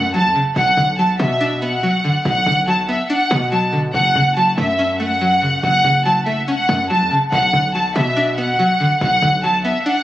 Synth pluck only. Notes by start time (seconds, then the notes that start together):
Already playing: C#3 F#3 A3 C#4
0.14 F#3
0.35 C#3
0.56 B2
0.77 D3
0.99 F#3
1.19 B3
1.40 D4
1.62 B3
1.83 F#3
2.04 D3
2.25 B2
2.46 D3
2.67 F#3
2.89 B3
3.10 D4
3.31 B3
3.52 F#3
3.73 D3
3.95 F#2
4.15 C#3
4.37 F#3
4.58 A3
4.79 C#4
5.00 A3
5.21 F#3
5.42 C#3
5.63 F#2
5.85 C#3
6.05 F#3
6.26 A3
6.48 C#4
6.69 A3
6.90 F#3
7.11 C#3
7.32 B2
7.53 D3
7.75 F#3
7.95 B3
8.17 D4
8.38 B3
8.59 F#3
8.80 D3
9.01 B2
9.22 D3
9.44 F#3
9.65 B3
9.86 D4